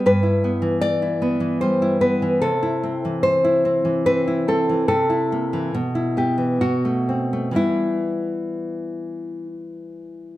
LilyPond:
\new Staff \with { instrumentName = "Nylon-string guitar" } { \time 3/4 \key e \minor \tempo 4 = 72 << { b'4 d''4 c''8 b'8 | a'4 c''4 b'8 a'8 | a'4. g'8 fis'4 | e'2 r4 | } \\ { g,16 e'16 b16 e8 e'16 b16 e16 g16 e'16 b16 e16 | c16 e'16 c'16 e8 e'16 c'16 e16 c'16 e'16 c'16 e16 | c16 e'16 bes16 e16 b,16 e'16 b16 e16 b,16 a16 c'16 a16 | <e g b>2. | } >> }